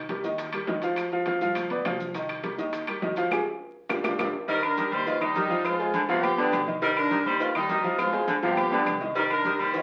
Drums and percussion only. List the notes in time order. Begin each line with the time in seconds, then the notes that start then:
0.09 high bongo, high conga, high timbale, low timbale, maracas
0.24 high bongo, high conga, maracas
0.38 high bongo, high conga, high timbale, maracas
0.53 high bongo, high conga, high timbale, claves, maracas
0.67 high bongo, low bongo, high conga, low timbale, maracas
0.82 high conga, high timbale, maracas
0.96 high bongo, high conga, high timbale, claves, maracas
1.11 high bongo, high conga, maracas
1.26 high bongo, high conga, high timbale, low timbale, maracas
1.41 high bongo, high conga, maracas
1.55 high bongo, high conga, low conga, high timbale, claves, maracas
1.70 high bongo, high conga, low conga, high timbale, maracas
1.85 high bongo, low bongo, high conga, high timbale, low timbale, claves, maracas
2.00 high conga, maracas
2.14 high bongo, high conga, high timbale, maracas
2.29 high bongo, high conga, high timbale, claves, maracas
2.43 high bongo, high conga, high timbale, low timbale, maracas
2.58 high bongo, high conga, maracas
2.73 high bongo, high conga, high timbale, maracas
2.87 high bongo, high conga, high timbale, claves, maracas
3.02 high bongo, low bongo, high conga, low timbale, maracas
3.16 high conga, high timbale, maracas
3.31 low bongo, low conga, high timbale, claves, maracas
3.89 low bongo, low conga, high timbale, claves, maracas
4.04 low bongo, low conga, high timbale, claves, maracas
4.19 low bongo, low conga, high timbale, claves, maracas
4.48 cowbell, high conga, maracas
4.63 high conga, low agogo, claves, maracas
4.77 cowbell, high conga, maracas
4.92 high conga, low agogo, maracas
5.06 cowbell, high conga, maracas
5.21 high conga, low agogo, claves, maracas
5.35 cowbell, high conga, low agogo, maracas
5.50 high conga, maracas
5.64 cowbell, high conga, low agogo, claves, maracas
5.79 high conga, maracas
5.94 cowbell, high conga, low agogo, maracas
6.09 cowbell, maracas
6.23 cowbell, high conga, low conga, low agogo, claves, maracas
6.38 high conga, low agogo, maracas
6.52 cowbell, high conga, low timbale, low agogo, claves, maracas
6.67 high conga, maracas
6.82 cowbell, maracas
6.96 high conga, low agogo, claves, maracas
7.11 cowbell, high conga, maracas
7.25 high conga, low agogo, maracas
7.40 cowbell, high conga, maracas
7.55 high conga, low agogo, claves, maracas
7.69 cowbell, high conga, low timbale, low agogo, maracas
7.84 high conga, maracas
7.98 cowbell, high bongo, high conga, low agogo, claves, maracas
8.13 high bongo, high conga, maracas
8.28 cowbell, high conga, low agogo, maracas
8.43 cowbell, high bongo, high conga, maracas
8.57 cowbell, high conga, low conga, low agogo, claves, maracas
8.71 low bongo, high conga, low conga, low agogo, maracas
8.86 cowbell, low bongo, high conga, low agogo, claves, maracas
9.01 low bongo, maracas
9.15 cowbell, high conga, maracas
9.30 high conga, low agogo, claves, maracas
9.45 cowbell, high conga, maracas
9.59 high conga, low agogo, maracas
9.74 cowbell, high conga, maracas